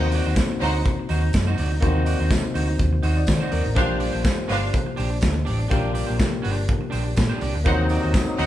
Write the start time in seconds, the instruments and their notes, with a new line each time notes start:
Already playing: fingered electric bass D#2, tine electric piano A#3 C4 D#4 F#4 C5
0.12 clean electric guitar D#4 F#4 D5, open hi-hat, tambourine
0.26 fingered electric bass D#2, clean electric guitar D#4 F#4 C5
0.36 muted clean electric guitar stroke, kick, snare, closed hi-hat, tambourine
0.52 muted clean electric guitar stroke
0.60 fingered electric bass D2, string section D#4 C5 F#5, clean electric guitar D#4 F#4 C5, snare, open hi-hat
0.75 muted clean electric guitar stroke
0.85 muted clean electric guitar stroke, kick, closed hi-hat, tambourine
0.99 muted clean electric guitar stroke
1.09 fingered electric bass D#2, clean electric guitar D#4 F#4 C5, open hi-hat, tambourine
1.23 muted clean electric guitar stroke
1.33 fingered electric bass F#2, muted clean electric guitar stroke, kick, snare, closed hi-hat, tambourine
1.47 clean electric guitar D#4 F#4 C5
1.58 fingered electric bass D2, clean electric guitar D#4 F#4 D5, open hi-hat, tambourine
1.71 muted clean electric guitar stroke
1.80 fingered electric bass D#2, tine electric piano A#3 C4 D#4 F#4 C5, clean electric guitar D#4 F#4 C5, kick, closed hi-hat, tambourine
2.05 clean electric guitar D#4 F#4 D5, open hi-hat, tambourine
2.20 fingered electric bass D#2, clean electric guitar D#4 F#4 C5
2.31 muted clean electric guitar stroke, kick, snare, closed hi-hat, tambourine
2.44 muted clean electric guitar stroke
2.54 fingered electric bass D2, clean electric guitar D#4 F#4 C5, open hi-hat, tambourine
2.68 muted clean electric guitar stroke
2.79 fingered electric bass D#2, muted clean electric guitar stroke, kick, closed hi-hat, tambourine
2.93 muted clean electric guitar stroke
3.03 fingered electric bass D#2, clean electric guitar D#4 F#4 C5, tine electric piano F#5, open hi-hat, tambourine
3.17 tine electric piano D5, muted clean electric guitar stroke
3.27 fingered electric bass D#3, tine electric piano C5, muted clean electric guitar stroke, kick, snare, closed hi-hat, tambourine
3.40 clean electric guitar D#4 F#4 C5
3.51 fingered electric bass D#2, clean electric guitar D#4 F#4 D5, tine electric piano A#4, open hi-hat, tambourine
3.65 fingered electric bass A1, muted clean electric guitar stroke
3.75 fingered electric bass A#1, tine electric piano A#3 D4 F4 G4 C5, clean electric guitar D4 G4 C5, string section D4 C5 F5, kick, closed hi-hat, tambourine
3.99 clean electric guitar D4 G4 D5, open hi-hat, tambourine
4.12 fingered electric bass A#1, clean electric guitar D4 G4 C5
4.23 muted clean electric guitar stroke, kick, snare, closed hi-hat, tambourine
4.38 muted clean electric guitar stroke
4.48 fingered electric bass G1, clean electric guitar D4 G4 C5, string section D4 C5 F5, snare, open hi-hat, tambourine
4.61 muted clean electric guitar stroke
4.72 muted clean electric guitar stroke, kick, closed hi-hat, tambourine
4.86 muted clean electric guitar stroke
4.96 fingered electric bass A#1, clean electric guitar D4 G4 C5, open hi-hat, tambourine
5.10 muted clean electric guitar stroke
5.21 fingered electric bass D2, muted clean electric guitar stroke, kick, snare, closed hi-hat, tambourine
5.34 muted clean electric guitar stroke
5.45 fingered electric bass A1, clean electric guitar D4 G4 D5, open hi-hat, tambourine
5.60 muted clean electric guitar stroke
5.68 fingered electric bass A#1, tine electric piano A#3 D4 F4 G4, clean electric guitar D4 G4 C5, kick, closed hi-hat, tambourine
5.73 tine electric piano A#4
5.93 clean electric guitar D4 G4 D5, open hi-hat, tambourine
6.07 fingered electric bass A#1, clean electric guitar D4 G4 C5
6.18 muted clean electric guitar stroke, kick, snare, closed hi-hat, tambourine
6.31 muted clean electric guitar stroke
6.42 fingered electric bass G1, clean electric guitar D4 G4 C5, open hi-hat
6.46 tambourine
6.56 muted clean electric guitar stroke
6.69 kick, closed hi-hat
6.81 muted clean electric guitar stroke
6.90 fingered electric bass A#1, clean electric guitar D4 G4 C5, open hi-hat
6.94 tambourine
7.04 muted clean electric guitar stroke
7.16 fingered electric bass A#2, muted clean electric guitar stroke, kick, snare, closed hi-hat, tambourine
7.29 clean electric guitar D4 G4 C5
7.41 fingered electric bass C2, clean electric guitar D4 G4 D5, open hi-hat, tambourine
7.55 fingered electric bass D2, muted clean electric guitar stroke
7.64 fingered electric bass D#2, accordion C3 F#3 D#4, tine electric piano A#3 C4 D#4 F4 C5, clean electric guitar D#4 F#4 C5, string section D#4 C5 F#5, kick, closed hi-hat, tambourine
7.73 tine electric piano F#4
7.89 clean electric guitar D#4 F#4 D5, open hi-hat, tambourine
8.03 fingered electric bass D#2, clean electric guitar D#4 F#4 C5
8.14 muted clean electric guitar stroke, kick, snare, closed hi-hat, tambourine
8.28 muted clean electric guitar stroke
8.38 fingered electric bass D2, clean electric guitar D#4 F#4 C5, string section D#4 C5 F#5, open hi-hat